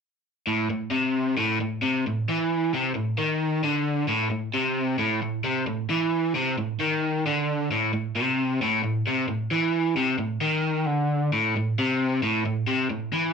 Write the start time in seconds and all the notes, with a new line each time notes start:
0.47 A2
0.70 A2
0.91 C3
1.37 A2
1.60 A2
1.82 C3
2.07 A2
2.29 E3
2.74 C3
2.95 A2
3.18 D#3
3.63 D3
4.09 A2
4.31 A2
4.54 C3
4.99 A2
5.23 A2
5.44 C3
5.67 A2
5.90 E3
6.35 C3
6.58 A2
6.80 D#3
7.27 D3
7.71 A2
7.94 A2
8.16 C3
8.62 A2
8.84 A2
9.07 C3
9.28 A2
9.51 E3
9.96 C3
10.18 A2
10.41 D#3
10.87 D3
11.33 A2
11.57 A2
11.79 C3
12.23 A2
12.46 A2
12.67 C3
12.90 A2
13.13 E3